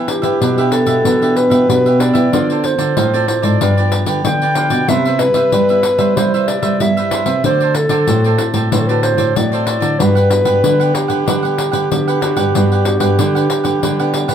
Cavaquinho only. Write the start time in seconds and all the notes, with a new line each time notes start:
0.09 muted cavaquinho stroke
0.22 G4 B4 E5
0.41 D4 G4 B4 E5
0.58 G4 B4 E5
0.87 G4 B4 E5
1.05 D4 G4 B4 E5
1.22 G4 B4 E5
1.50 G4 B4 E5
1.70 muted cavaquinho stroke
1.86 G4 B4 E5
2.00 D4 G4 B4 E5
2.13 G4 B4 E5
2.32 F4 A4 C5 D5
2.50 A4 C5 D5
2.64 muted cavaquinho stroke
2.78 A4 C5 D5
2.96 F4 A4 C5 D5
3.13 A4 C5 D5
3.42 A4 C5 D5
3.61 F4 G4 B4 D5
3.77 G4 B4 D5
4.06 G4 B4 D5
4.26 muted cavaquinho stroke
4.42 G4 B4 D5
4.56 F4 G4 B4 D5
4.71 G4 B4 D5
4.90 E4 B4 C5 E5
5.06 B4 C5 E5
5.21 muted cavaquinho stroke
5.35 B4 C5 E5
5.53 E4 B4 C5 E5
5.70 B4 E5
5.98 B4 C5 E5
6.16 E4 B4 C5 E5
6.34 B4 C5 E5
6.62 B4 C5 E5
6.81 muted cavaquinho stroke
6.97 B4 C5 E5
7.12 E4 B4 C5 E5
7.26 B4 C5 E5
7.45 F#4 A4 C5 D5
7.61 A4 C5 D5
7.75 muted cavaquinho stroke
7.90 A4 C5 D5
8.09 F#4 A4 C5 D5
8.25 A4 C5 D5
8.54 A4 C5 D5
8.72 F#4 A4 C5 D5
8.89 A4 C5 D5
9.17 A4 C5 D5
9.35 muted cavaquinho stroke
9.52 A4 C5 D5
9.65 F#4 A4 C5 D5
9.80 A4 C5 D5
9.99 D4 G4 B4 F#5
10.15 G4 B4 F#5
10.30 muted cavaquinho stroke
10.45 G4 B4 F#5
10.64 D4 G4 B4 F#5
10.80 G4 B4 F#5
11.08 G4 B4 F#5
11.26 D4 G4 B4 F#5
11.43 G4 B4 F#5
11.72 G4 B4 F#5
11.91 muted cavaquinho stroke
12.08 G4 B4 F#5
12.21 D4 G4 B4 F#5
12.37 G4 B4 F#5
12.55 D4 G4 B4 F#5
12.72 G4 B4 F#5
12.86 muted cavaquinho stroke
13.01 G4 B4 F#5
13.19 D4 G4 B4 F#5
13.35 G4 B4 F#5
13.64 G4 B4 F#5
13.82 D4 G4 B4 F#5
13.99 G4 B4 F#5
14.28 G4 B4 F#5